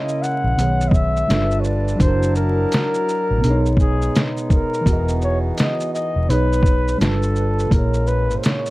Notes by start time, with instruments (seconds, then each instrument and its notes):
Already playing: tine electric piano C#3 C#4 E4 A#4 D#5, harmonium C#3 G#3 A#3 C#4 E4, flugelhorn D#5
0.09 shaker
0.22 flugelhorn F#5, shaker
0.44 fingered electric bass A#1
0.56 fingered electric bass B1, tine electric piano B2 D#3 B3, harmonium B3, closed hi-hat, shaker
0.61 tine electric piano G#4 C#5
0.81 shaker
0.89 flugelhorn D#5, kick
0.94 flugelhorn E5, shaker
1.16 shaker
1.28 fingered electric bass G1, tine electric piano G3 D4 F4, harmonium G3 D4 F4 B4 A5, snare, closed hi-hat, shaker
1.32 tine electric piano A4 B4
1.51 shaker
1.61 flugelhorn C#5, shaker
1.65 flugelhorn D5
1.88 shaker
1.96 tine electric piano F#3 D4, harmonium F#3
2.00 fingered electric bass F#1, harmonium E4 A#4, tine electric piano E4, flugelhorn C5, kick, closed hi-hat, shaker
2.05 tine electric piano F#4 A#4
2.23 shaker
2.36 flugelhorn A#4, shaker
2.72 snare, closed hi-hat, shaker
2.94 shaker
3.09 shaker
3.31 fingered electric bass A1
3.38 tine electric piano B2 B3
3.42 fingered electric bass B1, harmonium G#3 B3 D#4, tine electric piano D4, closed hi-hat, shaker
3.47 tine electric piano D#4 G#4 C#5
3.66 shaker
3.77 flugelhorn G#4, kick, shaker
4.02 shaker
4.16 snare, closed hi-hat, shaker
4.37 shaker
4.50 flugelhorn A#4, kick, shaker
4.74 shaker
4.81 tine electric piano E3 B3
4.85 fingered electric bass E1, harmonium E3 B3 F#4 G#4, tine electric piano F#4, kick, closed hi-hat, shaker
4.90 tine electric piano G#4 D#5
5.08 shaker
5.22 flugelhorn C#5, shaker
5.58 flugelhorn D#5, snare, closed hi-hat, shaker
5.80 shaker
5.94 flugelhorn D#5, shaker
6.16 fingered electric bass E1
6.27 fingered electric bass B1, tine electric piano B2 B3 D#4, harmonium G#3, flugelhorn B4, closed hi-hat, shaker
6.31 tine electric piano G#4 C#5
6.53 shaker
6.63 kick, shaker
6.88 shaker
6.98 fingered electric bass G1, tine electric piano G3 D4 F4, harmonium G3 D4 F4 A4 B4, flugelhorn A4, closed hi-hat, shaker
7.02 tine electric piano A4 B4, snare
7.23 shaker
7.36 shaker
7.59 shaker
7.67 tine electric piano A#2 A#3, harmonium G#3 A#3 C#4
7.71 fingered electric bass A#1, tine electric piano E4, flugelhorn A#4, kick, closed hi-hat, shaker
7.76 tine electric piano G#4 C#5
7.94 shaker
8.07 flugelhorn B4, shaker
8.30 shaker
8.37 flugelhorn C5
8.43 flugelhorn C#5, snare, closed hi-hat, shaker
8.66 shaker